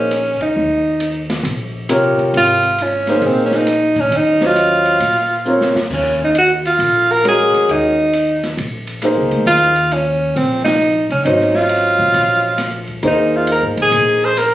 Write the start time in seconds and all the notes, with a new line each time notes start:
Already playing: A#1 C#4
0.11 cross-stick, hi-hat pedal, ride
0.40 D#4, muted upright bass stroke, kick, ride
0.56 D#2
1.00 hi-hat pedal, ride
1.30 snare, ride
1.43 A#1, ride
1.89 C3 F4 A#4 C#5, cross-stick, hi-hat pedal, ride
2.18 muted upright bass stroke, ride
2.34 G#1 F4, ride
2.63 ride
2.78 C#4, hi-hat pedal, ride
3.07 A#3 D#4 G#4 C5, snare, ride
3.21 A#1, ride
3.27 C4
3.46 C#4
3.51 snare
3.56 D#4
3.67 cross-stick, hi-hat pedal, ride
3.95 A#2, ride
4.00 C#4
4.11 D#2, ride
4.16 D#4
4.41 F#3 C#4 C5 D#5, snare
4.46 F4
4.56 hi-hat pedal, ride
4.85 ride
5.00 A#2, ride
5.45 C4 F4 A#4 C#5, hi-hat pedal
5.61 snare
5.75 F2, snare
5.90 D#2 C#4, kick, crash
6.20 kick
6.24 D#4
6.35 F#4, hi-hat pedal, ride
6.65 F4, ride
6.79 A#1, ride
7.11 A#4
7.23 G#3 C#4 F#4 A#4, cross-stick, hi-hat pedal, ride
7.28 G#4
7.54 muted upright bass stroke, ride
7.69 D#2 D#4, ride
8.13 hi-hat pedal, ride
8.43 snare, ride
8.57 A#1, ride
8.87 ride
9.02 A#3 D#4 G#4 C5, cross-stick, hi-hat pedal, ride
9.17 C#2
9.31 D2, ride
9.46 D#2 F4, ride
9.76 ride
9.91 C#4, hi-hat pedal, ride
10.36 A#1 C4, ride
10.64 D#4, snare, ride
10.81 hi-hat pedal
11.09 C#2 C#4, ride
11.25 G#1 F#3 C#4 D#4 C5 D#5, ride
11.40 snare
11.55 F4, snare
11.69 hi-hat pedal, ride
11.99 A#2
12.14 A#1, ride
12.58 cross-stick, snare, hi-hat pedal, ride
12.87 kick, ride
13.03 D#2 A#3 D#4 G#4 C5, ride
13.07 D#4
13.36 F4
13.47 hi-hat pedal, ride
13.52 A#4
13.62 G#2
13.77 A#2, ride
13.82 G#4
13.91 A#1, ride
14.25 C5
14.37 A#4, cross-stick, hi-hat pedal, ride